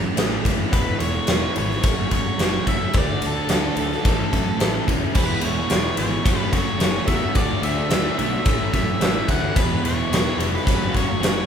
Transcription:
Already playing: A2 E3
0.01 C#4 E4, muted distorted electric guitar stroke
0.06 A3
0.16 A1 A2 E3 A3 C#4 E4, snare, ride, cowbell
0.20 C#4 E4
0.31 A3 C#4 E4
0.43 F#1 E3 A3 C#4 E4, kick, ride
0.47 C#4 E4
0.58 A3 C#4 E4
0.72 E1 E3 G#3 B3 E4 B4, kick, ride, cowbell
0.99 E1 E3 G#3 B3 C#5, ride
1.03 E4
1.13 G#3 B3 E4
1.27 E1 E3 G#3 B3 E4, snare, ride, cowbell
1.55 G#1 E3 G#3 B3 E4 C#5, ride
1.68 B3 E4, muted distorted electric guitar stroke, snare
1.72 G#3
1.81 F#1 F#3 A3 C#4 F#4, kick, ride, cowbell
1.95 A3 C#4 F#4
2.09 F#1 F#3 A3 C#4 F#4 C#5, kick, ride
2.23 A3 C#4 F#4, muted distorted electric guitar stroke
2.37 F#1 F#3 A3 C#4 F#4, snare, ride, cowbell
2.51 A3 C#4 F#4
2.66 F#1 F#3 A3 C#4 F#4 E5, kick, ride
2.79 A3 C#4 F#4
2.93 D2 D3 A3 D4 F#4, kick, ride, cowbell
2.98 D5
3.20 D2 D3 A3 D4 F#4, ride
3.27 A4
3.34 A3 D4 F#4
3.48 D2 D3 A3 D4 F#4, snare, ride, cowbell
3.76 D2 D3 A3 D4 F#4, ride
3.89 F#4, muted distorted electric guitar stroke, snare
3.93 A3 D4
4.05 A1 A2 E3 A3 C#4, kick, ride, cowbell
4.09 E4
4.17 A3 C#4 E4
4.30 F#2 E3 A3 C#4, kick, ride
4.34 A3 C#4 E4
4.44 E4, muted distorted electric guitar stroke
4.49 A3 C#4
4.57 A1 A2 E3, snare, ride, cowbell
4.61 E3 A3 C#4 E4
4.74 A3 C#4 E4
4.88 E1 E3 A3 C#4 E4, kick, ride
5.02 A3 C#4 E4
5.15 E1 E2 B2 E3 G#3 B3 E4 B4, kick, crash, cowbell
5.41 E1 E2 B2 E3 G#3 B3 C#5, ride
5.46 E4
5.56 G#3 B3 E4
5.69 E1 E2 B2 E3 G#3 B3, snare, ride, cowbell
5.73 E4
5.97 G#1 E2 B2 E3 G#3 B3 E4 C#5, ride
6.10 B3 E4, muted distorted electric guitar stroke
6.15 G#3
6.24 F#1 F#2 C#3 F#3 A3 C#4, kick, ride, cowbell
6.29 F#4
6.37 A3 C#4 F#4
6.52 F#1 F#2 C#3 F#3 A3 C#4 F#4 C#5, kick, ride
6.66 A3 C#4 F#4, muted distorted electric guitar stroke
6.78 F#1 F#2 C#3 F#3 A3 C#4, snare, ride, cowbell
6.83 F#4
6.93 A3 C#4 F#4
7.05 E2 F#2 C#3 F#3 A3 E5, kick, ride
7.10 C#4 F#4
7.20 C#4 F#4
7.24 A3
7.33 D2 D3 A3 D4 D5, kick, ride, cowbell
7.38 D4 F#4
7.62 D2 D3 A3 D4 F#4 E5, ride
7.77 A3 D4 F#4
7.89 D2 D3 A3 D4, snare, ride, cowbell
7.94 F#4
8.19 B1 D3 A3 D4 F#4 E5, ride
8.32 A3 D4 F#4, muted distorted electric guitar stroke
8.45 A1 A2 E3 A3, kick, ride, cowbell
8.49 C#4 E4
8.59 A3 C#4 E4
8.72 F#2 A2 E3 A3 C#4 E5, kick, ride
8.76 E4
8.86 A3 C#4 E4, muted distorted electric guitar stroke
9.00 A1 A2 E3 A3 C#4 E4, snare, ride, cowbell
9.14 A3 C#4 E4
9.26 D2 A2 E3 A3 C#4, kick, ride
9.30 E4 F#5
9.41 A3 C#4 E4
9.55 E1 E2 B2 E3 G#3 B3 E4 B4, kick, ride, cowbell
9.83 E1 E2 B2 E3 G#3 B3 E4 C#5, ride
9.96 G#3 B3 E4
10.10 E1 E2 B2 E3 G#3 B3 E4, ride, cowbell
10.14 snare
10.37 F1 E2 B2 E3 G#3 B3 E4 C#5, ride
10.51 G#3 B3 E4 B4, muted distorted electric guitar stroke
10.56 snare
10.65 F#1 F#2 C#3 F#3 A3 C#4 F#4, kick, ride, cowbell
10.78 A3 C#4 F#4
10.93 F#1 F#2 C#3 F#3 A3 C#4 F#4 C#5, kick, ride
11.06 A3 C#4 F#4, muted distorted electric guitar stroke
11.18 F#1 F#2 C#3 F#3 A3 C#4 F#4, cowbell
11.23 snare, ride
11.33 A3 C#4 F#4

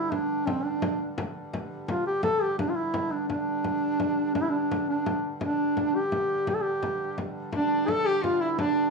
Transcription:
Already playing: G2 D3 E4
0.11 D4, frame drum
0.46 C4, frame drum
0.64 D4
0.82 frame drum
0.99 frame drum
1.18 frame drum
1.53 frame drum
1.88 F4, frame drum
2.06 G4, frame drum
2.23 A4, frame drum
2.42 G4, frame drum
2.58 D4, frame drum
2.69 F4
2.76 E4
2.94 frame drum
3.11 D4
3.28 G2 D3 D4, frame drum
3.64 frame drum
4.00 frame drum
4.18 frame drum
4.35 D4, frame drum
4.42 E4
4.50 D4
4.71 frame drum
4.89 D4
5.06 frame drum
5.24 frame drum
5.41 D4, frame drum
5.77 frame drum
5.95 G4
6.12 frame drum
6.30 frame drum
6.47 G4, frame drum
6.54 A4
6.62 G4
6.83 frame drum
7.00 frame drum
7.18 frame drum
7.52 G2 D3 D4, frame drum
7.88 A4, frame drum
8.06 G4
8.23 F4, frame drum
8.41 E4, frame drum
8.59 D4, frame drum

